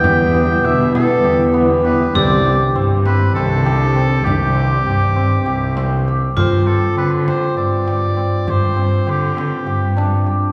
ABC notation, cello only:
X:1
M:7/8
L:1/8
Q:1/4=100
K:Gmix
V:1 name="Cello" clef=bass
E,,2 B,,2 E,,3 | C,,2 G,,2 C,,3 | C,,2 G,,2 C,,3 | G,,2 D,2 G,,3 |
G,,2 D,2 G,,3 |]